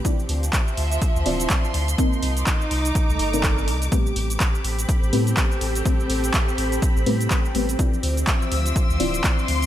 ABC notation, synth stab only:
X:1
M:4/4
L:1/16
Q:"Swing 16ths" 1/4=124
K:Am
V:1 name="Synth stab"
[CEFd]8- [CEFd]2 [CEFd]6 | [C_E_B_e]8- [CEBe]2 z [CEBd]4- [CEBd] | [A,CGB]8- [A,CGB]2 [A,CGB]6 | [A,CGc]8- [A,CGc]2 [A,CGB]4 [A,CGB]2 |
[CEFd]8- [CEFd]2 [CEFd]6 |]